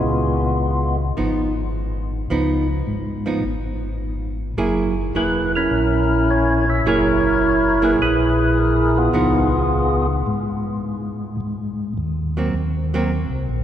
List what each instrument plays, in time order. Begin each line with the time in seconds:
Already playing: tonewheel organ G#3 B3 F4
0.03 tonewheel organ C#2
1.17 tonewheel organ G#1, hollow-body jazz guitar F3 B3 D#4
2.30 tonewheel organ C#2, hollow-body jazz guitar F3 B3 D#4
2.87 tonewheel organ G#2
3.26 hollow-body jazz guitar F3 B3 D#4
3.44 tonewheel organ G#1
4.57 tonewheel organ F#1, hollow-body jazz guitar F#3 A#3 E4 G#4
5.14 tonewheel organ E1 B4, hollow-body jazz guitar F#3 A#3 E4 G#4
5.56 tonewheel organ C#4 E4 A#4
5.71 tonewheel organ A#1
6.30 tonewheel organ C#5
6.70 tonewheel organ E5
6.85 tonewheel organ F#1 E4 A#4 C#5, hollow-body jazz guitar F#3 A#3 E4 G#4
7.82 hollow-body jazz guitar F#3 A#3 E4 G#4, tonewheel organ B4
7.99 tonewheel organ A#1 E4 G#4 B4
8.59 tonewheel organ A#4
8.98 tonewheel organ B3 F4 G#4
9.13 tonewheel organ C#2, hollow-body jazz guitar F3 B3 D#4
10.27 tonewheel organ G#2
11.40 tonewheel organ G#2
11.97 tonewheel organ D#2
12.37 hollow-body jazz guitar F#3 A#3 C4
12.54 tonewheel organ D#2
12.94 hollow-body jazz guitar F#3 A#3 C4
13.29 tonewheel organ C2
13.49 tonewheel organ A#1